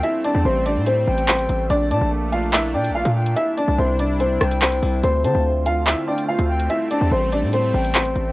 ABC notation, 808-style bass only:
X:1
M:4/4
L:1/16
Q:1/4=144
K:Aphr
V:1 name="808-style bass" clef=bass
z3 E,, A,,,3 A,,3 A,,,4 A,,,2 | B,,,2 B,, B,,,6- B,,, B,,3/2 B,,,3/2 B,,3 | z3 C,, C,,6 C,,4 C,,2 | D,,2 D, D,,6 z4 D,,3 |
z3 E,, A,,,3 A,,3 A,,,4 A,,,2 |]